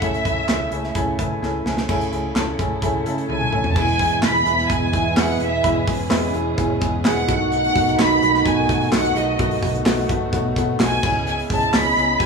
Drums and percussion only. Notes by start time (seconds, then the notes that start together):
0.02 kick, closed hi-hat
0.14 closed hi-hat
0.25 kick, closed hi-hat
0.49 snare, clap, closed hi-hat
0.72 closed hi-hat
0.84 snare
0.95 kick, closed hi-hat
1.19 kick, closed hi-hat
1.43 snare
1.66 snare
1.77 snare
1.89 kick, crash
2.01 closed hi-hat
2.13 closed hi-hat
2.36 snare, clap, closed hi-hat
2.59 kick, closed hi-hat
2.82 kick, closed hi-hat
3.06 closed hi-hat
3.18 closed hi-hat
3.30 high tom
3.41 mid tom
3.53 mid tom
3.64 floor tom
3.76 kick, crash
3.88 open hi-hat
3.99 kick, hi-hat pedal, open hi-hat
4.11 hi-hat pedal
4.23 snare, clap, hi-hat pedal, open hi-hat
4.46 hi-hat pedal, open hi-hat
4.58 snare
4.69 kick, hi-hat pedal, open hi-hat
4.93 kick, hi-hat pedal, open hi-hat
5.17 snare, clap, hi-hat pedal, open hi-hat
5.40 hi-hat pedal, open hi-hat
5.64 kick, hi-hat pedal, open hi-hat
5.87 kick, hi-hat pedal, open hi-hat
6.11 snare, clap, hi-hat pedal, open hi-hat
6.34 hi-hat pedal, open hi-hat
6.58 kick, hi-hat pedal, open hi-hat
6.81 kick, hi-hat pedal, open hi-hat
7.05 snare, clap, hi-hat pedal, open hi-hat
7.28 kick, hi-hat pedal, open hi-hat
7.52 hi-hat pedal, open hi-hat
7.64 open hi-hat
7.76 kick, hi-hat pedal, open hi-hat
7.88 hi-hat pedal
7.99 snare, clap, hi-hat pedal, open hi-hat
8.23 hi-hat pedal, open hi-hat
8.34 snare
8.46 kick, hi-hat pedal, open hi-hat
8.69 kick, hi-hat pedal, open hi-hat
8.81 open hi-hat
8.92 snare, clap, hi-hat pedal, open hi-hat
9.04 hi-hat pedal
9.16 hi-hat pedal, open hi-hat
9.39 kick, hi-hat pedal, open hi-hat
9.51 open hi-hat
9.63 kick, hi-hat pedal, open hi-hat
9.74 hi-hat pedal
9.86 snare, clap, hi-hat pedal, open hi-hat
10.09 kick, hi-hat pedal, open hi-hat
10.33 kick, hi-hat pedal, open hi-hat
10.56 kick, hi-hat pedal, open hi-hat
10.80 snare, clap, hi-hat pedal, open hi-hat
11.03 kick, crash
11.27 hi-hat pedal, open hi-hat
11.39 open hi-hat
11.50 kick, hi-hat pedal, open hi-hat
11.62 hi-hat pedal
11.74 snare, clap, hi-hat pedal, open hi-hat
11.97 hi-hat pedal, open hi-hat
12.20 kick, hi-hat pedal, open hi-hat